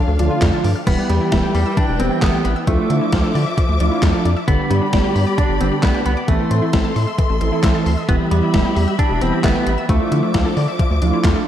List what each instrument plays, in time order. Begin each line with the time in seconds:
Already playing: clean electric guitar D4, string section D4 A4 F5
0.08 analog synth bass D2, synth arpeggio sound A3
0.19 analog synth bass D2, analog polysynth D3 F3 A3 D4 F4, synth arpeggio sound D4, closed hi-hat
0.31 synth arpeggio sound F4
0.42 analog synth bass F2, synth arpeggio sound F5, kick, snare, clap, closed hi-hat
0.53 synth arpeggio sound A5
0.64 analog synth bass G2, synth arpeggio sound D6, open hi-hat
0.76 synth arpeggio sound F6
0.87 analog synth bass E1, synth arpeggio sound E3, analog polysynth E3 G3 B3 E4 G4, clean electric guitar B3, string section E4 B4 G5, kick, closed hi-hat, crash
0.98 synth arpeggio sound G3
1.09 analog synth bass E2, clean electric guitar G3, synth arpeggio sound B3, closed hi-hat
1.21 synth arpeggio sound E4
1.32 analog synth bass E1, synth arpeggio sound E5, kick, snare, closed hi-hat
1.43 synth arpeggio sound G5
1.54 analog synth bass E2, clean electric guitar G3, synth arpeggio sound B5, open hi-hat
1.66 synth arpeggio sound E6
1.77 synth arpeggio sound E3, clean electric guitar D4, kick, closed hi-hat
1.88 analog synth bass E1, synth arpeggio sound G3
2.00 analog synth bass E1, analog polysynth E3 G3 B3 E4 G4, synth arpeggio sound B3, clean electric guitar C4, closed hi-hat
2.11 synth arpeggio sound E4
2.22 analog synth bass G1, clean electric guitar B3, synth arpeggio sound E5, kick, snare, clap, closed hi-hat
2.34 synth arpeggio sound G5
2.45 analog synth bass A1, synth arpeggio sound B5, closed hi-hat
2.56 synth arpeggio sound E6
2.67 analog synth bass D2, synth arpeggio sound F3, analog polysynth F3 A3 D4 E4 F4, string section F3 E5 D6, clean electric guitar A3, kick, closed hi-hat
2.79 synth arpeggio sound A3
2.90 analog synth bass D3, synth arpeggio sound D4, closed hi-hat
3.01 synth arpeggio sound E4
3.12 analog synth bass D2, synth arpeggio sound F4, kick, snare, closed hi-hat
3.24 synth arpeggio sound A4
3.35 analog synth bass D3, synth arpeggio sound D5, open hi-hat
3.46 synth arpeggio sound E5
3.58 synth arpeggio sound F3, kick, closed hi-hat
3.69 analog synth bass D2, synth arpeggio sound A3
3.80 analog synth bass D2, analog polysynth F3 A3 D4 E4 F4, synth arpeggio sound D4, closed hi-hat
3.91 synth arpeggio sound E4
4.02 analog synth bass E2, synth arpeggio sound F4, kick, snare, clap, closed hi-hat
4.14 synth arpeggio sound A4
4.25 analog synth bass F2, synth arpeggio sound D5, closed hi-hat
4.37 synth arpeggio sound E5
4.48 analog synth bass G1, synth arpeggio sound D3, analog polysynth D3 G3 B3 D4 G4, clean electric guitar B3, string section G4 D5 B5, kick, closed hi-hat
4.59 synth arpeggio sound G3
4.70 analog synth bass G2, clean electric guitar G3, synth arpeggio sound B3, closed hi-hat
4.82 synth arpeggio sound D4
4.93 analog synth bass G1, synth arpeggio sound D5, kick, snare, closed hi-hat
5.04 synth arpeggio sound G5
5.15 analog synth bass G2, synth arpeggio sound B5, open hi-hat
5.27 synth arpeggio sound D6
5.38 synth arpeggio sound D3, clean electric guitar D4, kick, closed hi-hat
5.49 analog synth bass G1, synth arpeggio sound G3
5.61 analog synth bass G1, analog polysynth D3 G3 B3 D4 G4, synth arpeggio sound B3, clean electric guitar C4, closed hi-hat
5.72 synth arpeggio sound D4
5.83 analog synth bass B1, clean electric guitar B3, synth arpeggio sound D5, kick, snare, clap, closed hi-hat
5.94 synth arpeggio sound G5
6.06 analog synth bass C2, clean electric guitar B3, synth arpeggio sound B5, closed hi-hat
6.17 synth arpeggio sound D6
6.28 analog synth bass A1, synth arpeggio sound E3, analog polysynth E3 A3 C4 E4 A4, clean electric guitar A3, string section A4 E5 C6, kick, closed hi-hat
6.40 synth arpeggio sound A3
6.51 analog synth bass A2, synth arpeggio sound C4, closed hi-hat
6.62 synth arpeggio sound E4
6.73 analog synth bass A1, synth arpeggio sound E5, kick, snare, closed hi-hat
6.85 synth arpeggio sound A5
6.96 analog synth bass A2, synth arpeggio sound C6, open hi-hat
7.07 synth arpeggio sound E6
7.19 synth arpeggio sound E3, kick, closed hi-hat
7.30 analog synth bass A1, synth arpeggio sound A3
7.41 analog synth bass A1, analog polysynth E3 A3 C4 E4 A4, synth arpeggio sound C4, closed hi-hat
7.52 synth arpeggio sound E4
7.63 analog synth bass C2, synth arpeggio sound E5, kick, snare, clap, closed hi-hat
7.75 synth arpeggio sound A5
7.86 analog synth bass D2, synth arpeggio sound C6, open hi-hat
7.97 synth arpeggio sound E6
8.09 analog synth bass E1, synth arpeggio sound E3, analog polysynth E3 G3 B3 E4 G4, clean electric guitar B3, string section G4 B5, kick, closed hi-hat
8.20 synth arpeggio sound G3
8.31 analog synth bass E2, clean electric guitar G3, synth arpeggio sound B3, closed hi-hat
8.42 synth arpeggio sound E4
8.54 analog synth bass E1, synth arpeggio sound E5, kick, snare, closed hi-hat
8.65 synth arpeggio sound G5
8.76 analog synth bass E2, synth arpeggio sound B5, open hi-hat
8.88 synth arpeggio sound E6
8.99 synth arpeggio sound E3, clean electric guitar D4, kick, closed hi-hat
9.10 analog synth bass E1, synth arpeggio sound G3
9.21 analog synth bass E1, analog polysynth E3 G3 B3 E4 G4, synth arpeggio sound B3, clean electric guitar C4, closed hi-hat
9.33 synth arpeggio sound E4
9.44 analog synth bass G1, clean electric guitar B3, synth arpeggio sound E5, kick, snare, clap, closed hi-hat
9.55 synth arpeggio sound G5
9.67 analog synth bass A1, synth arpeggio sound B5, closed hi-hat
9.78 synth arpeggio sound E6
9.89 analog synth bass D2, synth arpeggio sound F3, analog polysynth F3 A3 D4 E4 F4, string section F3 D6, clean electric guitar A3, kick, closed hi-hat
10.00 synth arpeggio sound A3
10.12 analog synth bass D3, synth arpeggio sound D4, closed hi-hat
10.23 synth arpeggio sound E4
10.34 analog synth bass D2, synth arpeggio sound F4, kick, snare, closed hi-hat
10.46 synth arpeggio sound A4
10.57 analog synth bass D3, synth arpeggio sound D5, open hi-hat
10.68 synth arpeggio sound E5
10.79 synth arpeggio sound F3, kick, closed hi-hat
10.91 analog synth bass D2, synth arpeggio sound A3
11.02 analog synth bass D2, analog polysynth F3 A3 D4 E4 F4, synth arpeggio sound D4, closed hi-hat
11.13 synth arpeggio sound E4
11.24 analog synth bass E2, synth arpeggio sound F4, kick, snare, clap, closed hi-hat
11.36 synth arpeggio sound A4